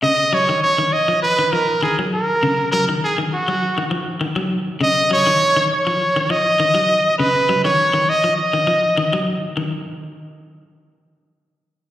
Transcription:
<<
  \new Staff \with { instrumentName = "Trumpet" } { \time 4/4 \key ees \minor \tempo 4 = 101 ees''8 des''8 des''8 ees''8 ces''8 bes'8 aes'8 bes'8~ | bes'8 bes'8 aes'8 ges'4 r4. | ees''8 des''4 des''4 ees''4. | ces''8. des''8. ees''8 ees''4. r8 |
r1 | }
  \new Staff \with { instrumentName = "Clean electric guitar" } { \clef bass \time 4/4 \key ees \minor des8 ges16 ees8 ees8 f8 ees16 f8 ees16 ges8 r16 | des8 ges16 ees8 ees8 ges8 ees16 f8 ees16 ges8 r16 | des8 ges16 ees8 ees8 f8 ees16 f8 ees16 ges8 r16 | des8 ges16 ees8 ees8 f8 ees16 f8 ees16 ges8 r16 |
ees8 r2. r8 | }
>>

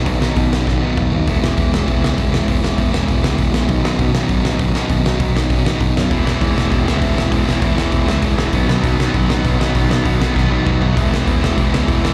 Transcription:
<<
  \new Staff \with { instrumentName = "Distorted electric guitar" } { \clef bass \time 4/4 \key e \major \tempo 4 = 198 <b, dis fis b dis'>8 <b, dis fis b dis'>8 <b, dis fis b dis'>8 <b, dis fis b dis'>8 <b, dis fis b dis'>8 <b, dis fis b dis'>8 <b, dis fis b dis'>8 <b, dis fis b dis'>8 | <e gis b e'>8 <e gis b e'>8 <e gis b e'>8 <e gis b e'>8 <e gis b e'>8 <e gis b e'>8 <e gis b e'>8 <e gis b e'>8 | <e gis b e'>8 <e gis b e'>8 <e gis b e'>8 <e gis b e'>8 <e gis b e'>8 <e gis b e'>8 <e gis b e'>8 <e gis b e'>8 | <b, dis fis b dis'>8 <b, dis fis b dis'>8 <b, dis fis b dis'>8 <b, dis fis b dis'>8 <b, dis fis b dis'>8 <b, dis fis b dis'>8 <b, dis fis b dis'>8 <b, dis fis b dis'>8 |
<b, dis fis b dis'>8 <b, dis fis b dis'>8 <b, dis fis b dis'>8 <b, dis fis b dis'>8 <b, dis fis b dis'>8 <b, dis fis b dis'>8 <b, dis fis b dis'>8 <b, dis fis b dis'>8 | <e gis b e'>8 <e gis b e'>8 <e gis b e'>8 <e gis b e'>8 <e gis b e'>8 <e gis b e'>8 <e gis b e'>8 <e gis b e'>8 | <e gis b e'>8 <e gis b e'>8 <e gis b e'>8 <e gis b e'>8 <e gis b e'>8 <e gis b e'>8 <e gis b e'>8 <e gis b e'>8 | <b, dis fis b dis'>8 <b, dis fis b dis'>8 <b, dis fis b dis'>8 <b, dis fis b dis'>8 <b, dis fis b dis'>8 <b, dis fis b dis'>8 <b, dis fis b dis'>8 <b, dis fis b dis'>8 |
<b, dis fis b dis'>8 <b, dis fis b dis'>8 <b, dis fis b dis'>8 <b, dis fis b dis'>8 <b, dis fis b dis'>8 <b, dis fis b dis'>8 <b, dis fis b dis'>8 <b, dis fis b dis'>8 | <e gis b e'>8 <e gis b e'>8 <e gis b e'>8 <e gis b e'>8 <e gis b e'>8 <e gis b e'>8 <e gis b e'>8 <e gis b e'>8 | }
  \new Staff \with { instrumentName = "Distorted electric guitar" } { \clef bass \time 4/4 \key e \major r1 | r1 | r1 | r1 |
r1 | <e, b, e>8 <e, b, e>8 <e, b, e>8 <e, b, e>8 <e, b, e>8 <e, b, e>8 <e, b, e>8 <e, b, e>8 | <e, b, e>8 <e, b, e>8 <e, b, e>8 <e, b, e>8 <e, b, e>8 <e, b, e>8 <e, b, e>8 <e, b, e>8 | <b, fis b>8 <b, fis b>8 <b, fis b>8 <b, fis b>8 <b, fis b>8 <b, fis b>8 <b, fis b>8 <b, fis b>8 |
<b, fis b>8 <b, fis b>8 <b, fis b>8 <b, fis b>8 <b, fis b>8 <b, fis b>8 <b, fis b>8 <b, fis b>8 | <e, b, e>8 <e, b, e>8 <e, b, e>8 <e, b, e>8 <e, b, e>8 <e, b, e>8 <e, b, e>8 <e, b, e>8 | }
  \new Staff \with { instrumentName = "Picked electric bass" } { \clef bass \time 4/4 \key e \major b,,8 b,,8 b,8 b,,8 b,,8 a,,8 b,,8 dis,8 | e,,8 e,,8 e,8 e,,8 e,,8 cis,8 e,,8 e,,8 | e,,8 e,,8 e,8 e,,8 e,,8 cis,8 e,,8 ais,,8 | b,,8 b,,8 b,8 b,,8 b,,8 a,,8 b,,8 b,,8 |
b,,8 b,,8 b,8 b,,8 b,,8 a,,8 b,,8 fis,8 | e,,8 e,,8 e,8 e,,8 e,,8 cis,8 e,,8 e,,8 | e,,8 e,,8 e,8 e,,8 e,,8 cis,8 e,,8 e,,8 | b,,8 b,,8 b,8 b,,8 b,,8 a,,8 b,,8 b,,8 |
b,,8 b,,8 b,8 b,,8 b,,8 a,,8 b,,8 b,,8 | e,,8 e,,8 e,8 e,,8 e,,8 cis,8 e,,8 e,,8 | }
  \new DrumStaff \with { instrumentName = "Drums" } \drummode { \time 4/4 <hho bd>8 sn8 <hho bd>8 sn8 <bd sn>4 <bd toml>8 tomfh8 | <hho bd>8 sn8 <hho bd>8 sn8 <hho bd>8 sn8 <hho bd>8 sn8 | <hho bd>8 sn8 <hho bd>8 sn8 <hho bd>8 sn8 <hho bd>8 sn8 | <hho bd>8 sn8 <hho bd>8 sn8 <hho bd>8 sn8 <hho bd>8 sn8 |
<hho bd>8 sn8 <hho bd>8 sn8 <hho bd>8 sn8 <hho bd>8 sn8 | <hho bd>8 sn8 <hho bd>8 sn8 <hho bd>8 sn8 <hho bd>8 sn8 | <hho bd>8 sn8 <hho bd>8 sn8 <hho bd>8 sn8 <hho bd>8 sn8 | <hho bd>8 sn8 <hho bd>8 sn8 <hho bd>8 sn8 <hho bd>8 sn8 |
<hho bd>8 sn8 <hho bd>8 sn8 <bd sn>4 <bd toml>8 tomfh8 | <hho bd>8 sn8 <hho bd>8 sn8 <hho bd>8 sn8 <hho bd>8 sn8 | }
>>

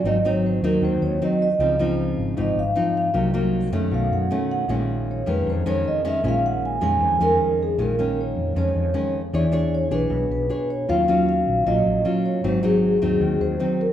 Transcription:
<<
  \new Staff \with { instrumentName = "Vibraphone" } { \time 4/4 \key bes \minor \tempo 4 = 155 << { ees''8 des''8 c''8 bes'8 c''8 des''8 ees''8 ees''8~ | ees''8 r4. ees''8 f''4 f''8 | r2 f''8 fis''4 fis''8 | r4 des''8 ces''8 c''8 des''8 ees''8 e''8 |
f''8 ges''8 aes''8 aes''4. r4 | r1 | r1 | r1 |
r1 | } \\ { r1 | r1 | r1 | r1 |
r2 r8 bes'4 aes'8 | bes'4 des''4 des''4. r8 | d''4 cis''8 b'4 b'4 cis''8 | f''4 f''4 ees''4 r8 des''8 |
c''8 aes'2 c''4 bes'8 | } >> }
  \new Staff \with { instrumentName = "Nylon-string guitar" } { \time 4/4 \key bes \minor << { <ges c' ees'>8 <ges c' ees'>4 <ges c' ees'>4. <ges c' ees'>8 r8 | <f c' ees'>8 <f c' ees'>4. <f c' ees'>8 r8 <f c' ees'>4 | <ges bes ees'>8 <ges bes ees'>4 <ees a des'>4. <dis a cis'>4 | <ees aes des'>4. <ees aes des'>4 <ees aes des'>4 <ees aes des'>8 |
<ees aes des'>4. <ees aes des'>4 <ees aes des'>4. | <ees aes des'>8 <ees aes des'>4. <ees aes des'>4 <ees aes des'>8 r8 | <d' gis' cis''>8 <d' gis' cis''>4 <d' gis' cis''>4. <d' gis' cis''>4 | <ges des' f'>8 <ges des' f'>4. <ges des' f'>4 <ges des' f'>4 |
<ges c' ees'>8 <ges c' ees'>4 <ges c' ees'>4. <ges c' ees'>8 r8 | } \\ { aes,2 ees2 | des2 aes,2 | c2 b,2 | bes,2 f,2 |
bes,2 f,2 | bes,2 f,2 | e2 b,2 | ees2 bes,2 |
aes,2 ees2 | } >> }
  \new Staff \with { instrumentName = "Fretless electric bass" } { \clef bass \time 4/4 \key bes \minor aes,,4. ees,8 ees,8 ees,8 r4 | des,4. aes,,8 aes,,8 aes,,8 r4 | c,4. ges,8 b,,8 fis,8 r4 | bes,,4. f,8 f,8 f,8 r4 |
bes,,4. f,8 f,8 f,8 r4 | bes,,4. f,8 f,8 f,8 r4 | e,4. b,,8 b,,8 b,,8 r4 | ees,4. bes,,8 bes,,8 bes,,8 r4 |
aes,,4. ees,8 ees,8 ees,8 r4 | }
>>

